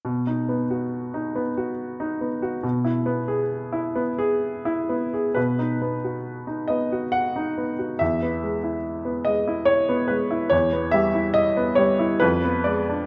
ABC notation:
X:1
M:3/4
L:1/16
Q:1/4=69
K:B
V:1 name="Grand piano"
z12 | z12 | B6 d2 f4 | e6 d2 c2 B2 |
c2 e2 d2 c2 _c2 =d2 |]
V:2 name="Grand piano"
B,, D B, F2 D B, F2 D B, F | B,, E B, G2 E B, G2 E B, G | B,, D B, F2 D B, F2 D B, F | E,, B, G, E2 B, G, E2 B, G, E |
E,, B, =G, E2 B, G, E =F,, _C _A, =D |]